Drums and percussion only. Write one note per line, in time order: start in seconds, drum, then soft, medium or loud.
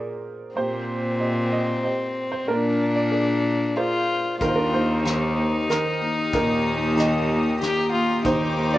4.41 kick medium
4.41 closed hi-hat soft
5.05 cross-stick medium
5.05 closed hi-hat soft
5.70 cross-stick medium
5.70 closed hi-hat soft
6.33 kick medium
6.33 closed hi-hat soft
6.97 cross-stick medium
6.97 closed hi-hat soft
7.61 cross-stick medium
7.61 closed hi-hat soft
8.25 kick medium
8.25 closed hi-hat soft